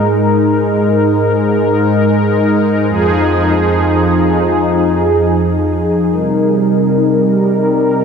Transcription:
Already playing: G#2 G#3 D#4 A#4
2.89 F2 F3 D#4 G#4
6.11 C3 G3 D#4 A#4

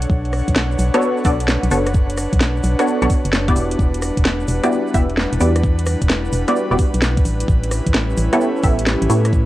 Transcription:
Already playing: D4 C#5 F#5 A5
0.02 closed hi-hat, shaker
0.10 B1 B4, kick, shaker
0.25 closed hi-hat, shaker
0.32 cross-stick, open hi-hat, shaker
0.48 B1, kick, closed hi-hat, shaker
0.55 snare, shaker
0.71 shaker
0.79 B1, open hi-hat, shaker
0.94 B3 D4 F#4 A4 C#5, cross-stick, closed hi-hat, shaker
1.02 shaker
1.17 shaker
1.25 B1 B3 D4 F#4 A4 D5, kick, open hi-hat, shaker
1.40 closed hi-hat, shaker
1.48 snare, shaker
1.63 B1, closed hi-hat, shaker
1.71 F#1 B3 D4 F#4 A4 C#5, open hi-hat, shaker
1.86 cross-stick, closed hi-hat, shaker
1.94 kick, shaker
2.10 closed hi-hat, shaker
2.17 cross-stick, open hi-hat, shaker
2.33 B1, kick, closed hi-hat, shaker
2.40 snare, shaker
2.56 shaker
2.63 B1, open hi-hat, shaker
2.79 B3 D4 F#4 A4 C#5, cross-stick, closed hi-hat, shaker
2.87 shaker
3.02 B1 B3 D4 F#4 A4 C#5, closed hi-hat, shaker
3.10 kick, open hi-hat, shaker
3.25 F#1, closed hi-hat, shaker
3.33 snare, shaker
3.48 B3 E4 F#4 G4 D5, kick, closed hi-hat, shaker
3.56 E1 G3 E4, open hi-hat, shaker
3.68 D5, closed hi-hat, shaker
3.79 E1, kick, shaker
3.94 closed hi-hat, shaker
4.02 cross-stick, open hi-hat, shaker
4.17 E1, kick, closed hi-hat, shaker
4.25 snare, shaker
4.40 shaker
4.48 E1, open hi-hat, shaker
4.63 B3 E4 F#4 G4 D5, cross-stick, closed hi-hat, shaker
4.72 shaker
4.87 shaker
4.94 E1 B3 E4 F#4 G4 E5, kick, open hi-hat, shaker
5.09 closed hi-hat, shaker
5.17 snare, shaker
5.33 E1, closed hi-hat, shaker
5.40 E2 B3 E4 F#4 G4 D5, open hi-hat, shaker
5.56 cross-stick, closed hi-hat, shaker
5.63 kick, shaker
5.78 closed hi-hat, shaker
5.86 cross-stick, open hi-hat, shaker
6.02 E1, kick, closed hi-hat, shaker
6.10 snare, shaker
6.25 shaker
6.33 E1, open hi-hat, shaker
6.48 B3 E4 F#4 G4 D5, cross-stick, closed hi-hat, shaker
6.56 shaker
6.71 E1 B3 E4 F#4 G4 D5, shaker
6.79 kick, open hi-hat, shaker
6.94 B1, closed hi-hat, shaker
7.02 snare, shaker
7.17 kick, closed hi-hat, shaker
7.25 A1 C#4 E4 G4, open hi-hat, shaker
7.40 closed hi-hat, shaker
7.48 A1, kick, shaker
7.59 C#5
7.63 closed hi-hat, shaker
7.71 cross-stick, open hi-hat, shaker
7.86 A1 A5, kick, closed hi-hat, shaker
7.94 snare, shaker
8.10 shaker
8.17 A1, open hi-hat, shaker
8.33 B3 E4 G4 A4 C#5, cross-stick, closed hi-hat, shaker
8.41 shaker
8.56 shaker
8.63 A1 B3 E4 G4 A4 E5, kick, open hi-hat, shaker
8.78 closed hi-hat, shaker
8.86 snare, shaker
9.02 A1, closed hi-hat, shaker
9.10 A2 B3 E4 G4 A4 C#5, open hi-hat, shaker
9.25 cross-stick, closed hi-hat, shaker
9.33 kick, shaker

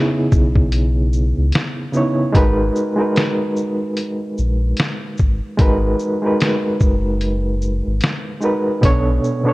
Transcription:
Already playing: C#3 B3 D4 D#4 E4 G#4 B4 C#5
0.32 B1, kick, shaker
0.56 kick
0.72 closed hi-hat
1.13 shaker
1.38 C#2
1.52 snare, closed hi-hat
1.92 C#3 B3 D#4 E4, shaker
1.97 C#5
2.33 G#1 G#3 D#4 F#4 A#4 B4, kick, closed hi-hat
2.76 shaker
2.96 G#3 D#4 F#4 A#4
3.01 B4
3.16 snare, closed hi-hat
3.56 shaker
3.97 closed hi-hat
4.38 A#1, shaker
4.77 snare, closed hi-hat
5.17 G#1, kick, shaker
5.57 G#1 G#3 D#4 F#4 A#4, kick, closed hi-hat
5.61 B4
5.99 shaker
6.22 G#3 D#4 F#4 A#4
6.26 B4
6.40 snare, closed hi-hat
6.80 F#1, kick, shaker
7.21 closed hi-hat
7.62 shaker
7.87 G#1
8.01 snare, closed hi-hat
8.41 G#3 D#4 F#4 A#4, shaker
8.45 B4
8.81 B1 B2 B3 D4 A4, kick, closed hi-hat
8.85 C#5
9.24 shaker
9.44 B2 B3 D4 A4
9.49 C#5

